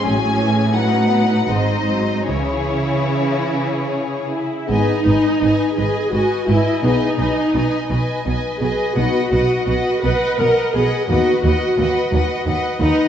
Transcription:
<<
  \new Staff \with { instrumentName = "Violin section" } { \time 3/4 \key cis \minor \tempo 4 = 84 gis''4 fis''4 dis''4 | cis''2~ cis''8 r8 | \key gis \minor gis''8 gis''8 gis''8 gis''8 gis''8 gis''8 | gis''8 gis''8 gis''8 gis''8 gis''8 gis''8 |
fis''8 fis''8 fis''8 fis''8 fis''8 fis''8 | fis''8 fis''8 fis''8 fis''8 fis''8 fis''8 | }
  \new Staff \with { instrumentName = "Violin section" } { \time 3/4 \key cis \minor <cis' gis'>4 <dis' b'>4 <dis' bis'>4 | <e' gis'>2~ <e' gis'>8 r8 | \key gis \minor <b' dis''>8 <b' dis''>8 <b' dis''>8 <b' dis''>8 <b' dis''>8 <b' dis''>8 | <b' dis''>8 <b' dis''>8 <b' dis''>8 <b' dis''>8 <b' dis''>8 <b' dis''>8 |
<b' dis''>8 <b' dis''>8 <b' dis''>8 <b' dis''>8 <b' dis''>8 <b' dis''>8 | <b' dis''>8 <b' dis''>8 <b' dis''>8 <b' dis''>8 <b' dis''>8 <b' dis''>8 | }
  \new Staff \with { instrumentName = "Viola section" } { \time 3/4 \key cis \minor << { cis'4 cis'8 b8 bis4 | cis'2~ cis'8 e'8 | \key gis \minor dis'4. gis'8 fis'8 e'8 | dis'2 r8 gis'8 |
fis'4. b'8 ais'8 gis'8 | fis'2 r8 dis'8 | } \\ { fis8 e8 fis4 gis8 fis8 | e2~ e8 r8 | r2. | r2. |
r2. | r2. | } >> }
  \new Staff \with { instrumentName = "French horn section" } { \time 3/4 \key cis \minor r2. | r2. | \key gis \minor <b gis'>8 r2 r8 | <b gis'>8 r2 r8 |
<b dis'>8 r2 r8 | <b dis'>8 r2 r8 | }
  \new Staff \with { instrumentName = "Cello section" } { \clef bass \time 3/4 \key cis \minor a,2 gis,4 | cis2~ cis8 r8 | \key gis \minor gis,8 gis,8 gis,8 gis,8 gis,8 gis,8 | b,8 b,8 b,8 b,8 b,8 b,8 |
b,8 b,8 b,8 b,8 b,8 b,8 | dis,8 dis,8 dis,8 dis,8 dis,8 dis,8 | }
  \new Staff \with { instrumentName = "Double bass section" } { \clef bass \time 3/4 \key cis \minor a,,4 r4 gis,,4 | cis,4 r2 | \key gis \minor gis,,8 gis,,8 gis,,8 gis,,8 gis,,8 gis,,8 | b,,8 b,,8 b,,8 b,,8 b,,8 b,,8 |
b,,8 b,,8 b,,8 b,,8 b,,8 b,,8 | dis,8 dis,8 dis,8 dis,8 dis,8 dis,8 | }
>>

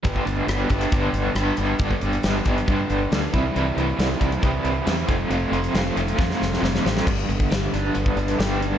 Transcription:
<<
  \new Staff \with { instrumentName = "Overdriven electric guitar" } { \time 4/4 \key g \mixolydian \tempo 4 = 137 <g, d g b d' g'>8 <g b d' g'>8 <g b d' g'>8 <g b d' g'>8 <g, d g b d' g'>4 <g b d' g'>8 <g b d' g'>8 | <g, d g b d' g'>8 <g b d' g'>8 <g b d' g'>8 <g b d' g'>8 <g, d g b d' g'>4 <g b d' g'>8 <c e g c' e'>8 | <c e g c' e'>8 <g c' e'>8 <e g c' e'>8 <g c' e'>8 <c e g c' e'>4 <e g c' e'>8 <f, c f a c' f'>8 | <f, c f a c' f'>8 <f a c' f'>8 <f a c' f'>8 <f a c' f'>8 <f, c f a c' f'>4 <f a c' f'>8 <f a c' f'>8 |
g,8 d8 g8 d'8 b8 d'8 g'8 d'8 | }
  \new Staff \with { instrumentName = "Fingered electric bass" } { \clef bass \time 4/4 \key g \mixolydian g,,8 g,,8 g,,8 g,,8 g,,8 g,,8 g,,8 g,,8 | g,,8 g,,8 g,,8 g,,8 g,8 g,,8 d,8 c,8 | c,8 c,8 c,8 c,8 c,8 c,8 e,8 f,,8 | f,,8 f,,8 f,,8 f,,8 f,8 f,,8 f,,8 a,,8 |
g,,8 g,,8 g,,8 g,,8 g,,8 g,,8 g,,4 | }
  \new DrumStaff \with { instrumentName = "Drums" } \drummode { \time 4/4 <hh bd>16 bd16 hh8 <hh ss>8 <hh bd>16 hh16 <hh bd>8 hh8 <hh ss>8 hh8 | <hh bd>16 bd16 hh16 hh16 <hh sn>8 <hh bd>16 hh16 <hh bd>8 hh8 <hh sn>8 <hh bd>8 | hh8 hh8 <hh sn>8 <hh bd>16 hh16 <hh bd>8 hh8 <hh sn>8 <hh bd>8 | hh8 hh16 hh16 <hh sn>8 hh16 hh16 <bd sn>16 sn16 sn16 sn16 sn16 sn16 sn16 sn16 |
<cymc bd>8 hh16 bd16 <hh sn>8 <hh sn>8 hh16 bd16 hh16 hh16 <hh sn>8 hh8 | }
>>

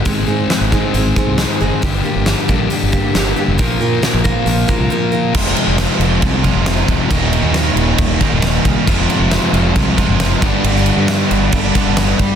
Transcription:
<<
  \new Staff \with { instrumentName = "Steel-string acoustic guitar" } { \time 4/4 \key f \dorian \tempo 4 = 136 <aes, ees aes c' ees' aes'>8 <aes c' ees' aes'>8 <aes c' ees' aes'>8 <aes, ees aes c' ees' aes'>8 <aes c' ees' aes'>8 <aes, ees aes c' ees' aes'>8 <aes c' ees' aes'>8 <aes c' ees' aes'>8 | <g, d g bes d' g'>8 <g bes d' g'>8 <g bes d' g'>8 <g, d g bes d' g'>8 <g bes d' g'>8 <g, d g bes d' g'>8 <g bes d' g'>8 <g bes d' g'>8 | <bes, f bes f' bes'>8 <bes f' bes'>8 <f bes f' bes'>8 <bes, f bes f' bes'>8 <f bes f' bes'>8 <bes, f bes f' bes'>8 <f bes f' bes'>8 <bes f' bes'>8 | r1 |
r1 | r1 | r1 | }
  \new Staff \with { instrumentName = "Distorted electric guitar" } { \clef bass \time 4/4 \key f \dorian <aes, ees aes c' ees' aes'>4. <aes, ees aes c' ees' aes'>2~ <aes, ees aes c' ees' aes'>8 | <g, d g bes d' g'>4. <g, d g bes d' g'>2~ <g, d g bes d' g'>8 | <bes, f bes f' bes'>4. <bes, f bes f' bes'>2~ <bes, f bes f' bes'>8 | <f, c f aes c' f'>1 |
<ees, bes, ees g bes ees'>1 | <f, c f aes c' f'>2.~ <f, c f aes c' f'>8 <g, d g b d' g'>8~ | <g, d g b d' g'>2.~ <g, d g b d' g'>8 r8 | }
  \new Staff \with { instrumentName = "Overdriven electric guitar" } { \clef bass \time 4/4 \key f \dorian r1 | r1 | r1 | <f, c f aes c' f'>2~ <f, c f aes c' f'>8 <f, c f aes c' f'>8 <f, c f aes c' f'>4 |
<ees, bes, ees g bes ees'>2~ <ees, bes, ees g bes ees'>8 <ees, bes, ees g bes ees'>8 <ees, bes, ees g bes ees'>4 | <f, c f aes c' f'>2~ <f, c f aes c' f'>8 <f, c f aes c' f'>8 <f, c f aes c' f'>8 <g, d g b d' g'>8~ | <g, d g b d' g'>2 <g, d g b d' g'>8 <g, d g b d' g'>4 r8 | }
  \new Staff \with { instrumentName = "Fingered electric bass" } { \clef bass \time 4/4 \key f \dorian aes,,8 aes,8 r16 aes,,8 r16 aes,,8 r16 c,8 r16 fis,,16 r16 | g,,8 r16 g,,8 r16 bes,,8 r16 g,,8 r16 g,,8 r16 f,,16 | bes,,8 bes,8 r16 bes,,8 r16 bes,,8 r16 c,16 r4 | f,,8 r16 f,,8 r16 f,,8 c,8. f,,8. d,,16 r16 |
ees,,8. ees,8. ees,,8 ees,,8 r16 ees,,8. c,16 r16 | f,,8 r16 f,,8 r16 f,,8 c,8. fis,,8. g,,16 r16 | g,,8. g,8. g,,8 g,,8 r16 g,,8. g,,16 r16 | }
  \new DrumStaff \with { instrumentName = "Drums" } \drummode { \time 4/4 <hho bd>4 <hho sn>8 bd8 hho8 bd8 <hho sn>4 | <hho bd>4 <hho sn>8 bd8 hho8 bd8 <hho sn>4 | <hho bd>4 <hho sn>8 bd8 hho8 bd8 r4 | <cymc bd>16 sn16 cymc8 <cymc sn>8 cymc8 <cymc bd>8 <cymc bd>8 <cymc sn>8 <cymc bd>8 |
<cymc bd>8 cymc8 <cymc sn>8 cymc8 <cymc bd>8 <cymc bd>8 <cymc sn>8 <cymc bd>8 | <cymc bd>8 cymc8 <cymc sn>8 cymc8 <cymc bd>8 <cymc bd>8 <cymc sn>8 <cymc bd>8 | cymc16 sn16 cymc8 <cymc sn>8 cymc8 <cymc bd>8 <cymc bd>8 <cymc sn>8 <cymc bd>8 | }
>>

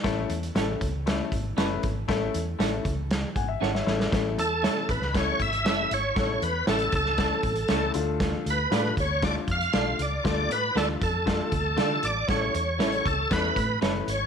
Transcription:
<<
  \new Staff \with { instrumentName = "Tonewheel organ" } { \time 4/4 \key a \major \tempo 4 = 118 r1 | r1 | r8 a'4 b'8 cis''8 e''4 cis''8 | cis''8 b'8 a'8 a'2 r8 |
r8 b'4 cis''8 d''8 f''4 d''8 | d''8 b'8 a'8 a'2 d''8 | cis''8 cis''4 a'8 b'4 r8 cis''8 | }
  \new Staff \with { instrumentName = "Clean electric guitar" } { \time 4/4 \key a \major r4 <cis' e' a' cis''>8 r4. <cis' e' a' cis''>8 r8 | r4 <cis' e' a' cis''>8 r4. <cis' e' a' cis''>8 r8 | r4 <cis' e' a' cis''>8 r4. <cis' e' a' cis''>8 r8 | r4 <cis' e' a' cis''>8 r4. <cis' e' a' cis''>8 r8 |
r4 <d' f' a' d''>8 r4. <d' f' a' d''>8 r8 | r4 <d' f' a' d''>8 r4. <d' f' a' d''>8 r8 | r4 <cis' e' a' cis''>8 r4. <cis' e' a' cis''>8 r8 | }
  \new Staff \with { instrumentName = "Upright piano" } { \time 4/4 \key a \major << { r1 | r2 r8 <fis'' gis''>16 e''16 fis''16 <cis'' e''>8. | r1 | r1 |
r1 | r1 | r1 | } \\ { <a cis' e' a'>8 r8 <a cis' e' a'>8 r8 <a cis' e' a'>8 r8 <a cis' e' b'>8 r8 | <a cis' e' a'>8 r8 <a cis' e' a'>8 r2 <a cis' e' a'>8 | <a cis' e' a'>8 r8 <a cis' e' a'>8 r8 <a cis' e' a'>8 r8 <a cis' e' a'>8 r8 | <a cis' e' a'>8 r8 <a cis' e' a'>8 r8 <a cis' e' a'>8 r8 <a cis' e' a'>8 <a d' f' a'>8~ |
<a d' f' a'>8 r8 <a d' f' a'>8 r8 <a d' f' a'>8 r8 <a d' f' a'>8 r8 | <a d' f' a'>8 r8 <a d' f' a'>8 r8 <a d' f' a'>8 r8 <a d' f' a'>8 r8 | <a cis' e' a'>8 r8 <a cis' e' a'>8 r8 <a cis' e' a'>8 r8 <a cis' e' b'>8 r8 | } >> }
  \new Staff \with { instrumentName = "Fingered electric bass" } { \clef bass \time 4/4 \key a \major a,,8 e,8 a,,8 cis,4 gis,,8 fis,,8 gis,,8 | a,,8 e,8 a,,8 cis,4 gis,,8 gis,,8 a,,8 | a,,8 e,8. r16 a,,16 cis,8. gis,,8 fis,,8 gis,,8 | a,,8 e,8 a,,8 cis,4 a,,8 cis,8 d,8~ |
d,8 d,8 a,8 d,4 f,8 b,,8 cis,8 | d,8 a,8 d,8 f,4 d,8 d8 a,,8 | a,,8 e,8 a,,8 cis,8 e,8 a,8 fis,,8 gis,,8 | }
  \new DrumStaff \with { instrumentName = "Drums" } \drummode { \time 4/4 <hh bd sn>8 hh16 hh16 <hh sn>8 <hh bd>8 <hh sn>8 <hh bd>8 <hh sn>8 <hh bd>8 | <hh bd sn>8 hh8 <hh sn>8 <hh bd>8 <hh sn>8 <hh bd>8 sn16 sn16 sn16 sn16 | <hh bd sn>8 hh8 <hh sn>8 <hh bd>16 sn16 <hh bd sn>8 <hh bd>16 hh16 <hh sn>8 hh8 | <hh bd sn>8 hh8 <hh sn>16 hh16 <hh bd>16 sn16 <hh bd sn>8 <hh bd>16 hh16 <hh sn>8 hh8 |
<hh bd sn>8 hh8 <hh sn>8 <hh bd>8 <hh bd sn>8 <hh bd>16 hh16 <hh sn>8 hh8 | <hh bd sn>8 hh8 <hh sn>8 <hh bd>8 <hh bd sn>8 <hh bd>8 <hh sn>8 hh8 | <hh bd sn>8 hh8 <hh sn>16 hh16 <hh bd>8 <hh bd sn>8 <hh bd>8 <hh sn>8 hh8 | }
>>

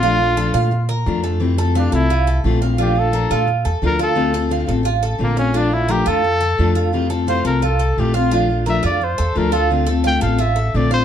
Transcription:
<<
  \new Staff \with { instrumentName = "Cuban tres" } { \time 4/4 \key bes \lydian \tempo 4 = 174 f'4 a'8 f''4 bes'4 a'8 | r8 a'8 f''8 a'8 f'8 a'4 f''8 | f'4 bes'8 f'4 a'4 f'8~ | f'8 a'8 f''8 a'8 f'8 a'4 f''8 |
f'4 bes'8 f'4 a'4 f'8~ | f'8 a'8 f''8 a'8 f'8 a'4 f''8 | f'4 bes'8 f'4 a'4 f'8~ | f'8 a'8 f''8 a'8 f'8 a'4 f''8 | }
  \new Staff \with { instrumentName = "Trumpet" } { \time 4/4 \key bes \lydian f'2. r4 | r4 d'8 e'4. r4 | g'8 a'4. r4 bes'8 a'8~ | a'4 r2 bes8 des'8 |
d'8 e'8 g'8 a'2~ a'8 | r4 c''8 bes'8 a'4 g'8 f'8 | r4 e''8 d''8 c''4 bes'8 a'8 | r4 g''8 f''8 e''4 d''8 c''8 | }
  \new Staff \with { instrumentName = "Steel-string acoustic guitar" } { \time 4/4 \key bes \lydian <f a d' f'>8 <a f'>8 <f a d' f'>8 <a d' f'>8 r4 <f a d' f'>8 <a d' f'>8 | <c e a c' f'>8 <a c' f'>8 <c e a c' f'>8 <a c' f'>8 r4 <c e a c' f'>8 <a c' f'>8 | <f a d' f'>8 <a d' f'>8 <f a d' f'>8 <a d' f'>8 r4 <f a d' f'>8 <a d' f'>8 | <d a c' f'>8 <a c' f'>8 <d a c' f'>8 <a c' f'>8 r4 <d a c' f'>8 <a c' f'>8 |
<f a d' f'>8 <a d' f'>8 <f a d' f'>8 <a d' f'>8 r4 <f a d' f'>8 <a d' f'>8 | <c e a c' f'>8 <a c' f'>8 <c e a c' f'>8 <a c' f'>8 r4 <c e a c' f'>8 <a c' f'>8 | <f a d' f'>8 <a d' f'>8 <f a d' f'>8 <a d' f'>8 r4 <f a d' f'>8 <a d' f'>8 | <d a c' f'>8 <a c' f'>8 <d a c' f'>8 <a c' f'>8 r4 <d a c' f'>8 <a c' f'>8 | }
  \new Staff \with { instrumentName = "Upright bass" } { \clef bass \time 4/4 \key bes \lydian bes,,4. bes,4. f,4~ | f,4. c,4. bes,,4~ | bes,,4. bes,4 e,8 d,4~ | d,4. a,,4. bes,,4~ |
bes,,4. f,4. f,4~ | f,4. c,4. bes,,4~ | bes,,4. f,4 e,8 d,4~ | d,4. a,,4. bes,,4 | }
>>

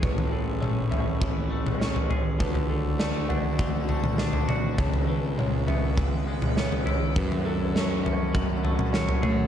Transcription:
<<
  \new Staff \with { instrumentName = "Felt piano" } { \time 4/4 \key a \major \tempo 4 = 101 b'8 a'8 cis''8 e''4 r8 cis''8 cis''8 | b'8 a'8 d''8 fis''4 r8 d''8 d''8 | cis''8 b'8 cis''8 e''4 r8 cis''8 cis''8 | b'8 a'8 cis''8 e''4 r8 cis''8 cis''8 | }
  \new Staff \with { instrumentName = "Ambient pad" } { \time 4/4 \key a \major << { <a gis' b' cis''>1 | <d fis' a' a''>1 | <cis gis' b' e''>1 | <fis gis' a' fis''>1 | } \\ { e'1 | d'1 | cis'1~ | cis'1 | } >> }
  \new Staff \with { instrumentName = "Cello" } { \time 4/4 \key a \major r1 | r1 | r1 | r2. r8 a8 | }
  \new Staff \with { instrumentName = "Clean electric guitar" } { \time 4/4 \key a \major a,8 e8 a8 cis'8 e8 a8 cis'8 gis'8 | d8 d8 a8 d'8 d8 a8 d'8 fis'8 | cis8 e8 gis8 b8 e8 gis8 b8 e'8 | fis,8 fis8 a8 cis'8 fis8 a8 cis'8 gis'8 | }
  \new Staff \with { instrumentName = "Picked electric bass" } { \clef bass \time 4/4 \key a \major a,,1 | d,1 | cis,1 | fis,1 | }
  \new DrumStaff \with { instrumentName = "Drums" } \drummode { \time 4/4 <bd tomfh>16 tomfh8. toml8 tomfh8 <bd tomfh>8. <tomfh toml>16 sn16 tomfh16 tomfh8 | <bd tomfh>16 tomfh8. sn8 tomfh8 <bd tomfh>8 tomfh16 <tomfh toml>16 sn16 tomfh16 <tomfh toml>8 | <bd tomfh>16 tomfh8. toml8 tomfh8 <bd tomfh>8. <tomfh toml>16 sn16 tomfh16 tomfh8 | <bd tomfh>16 tomfh8. sn8 tomfh8 <bd tomfh>8 tomfh16 <tomfh toml>16 sn16 tomfh16 <tomfh toml>8 | }
>>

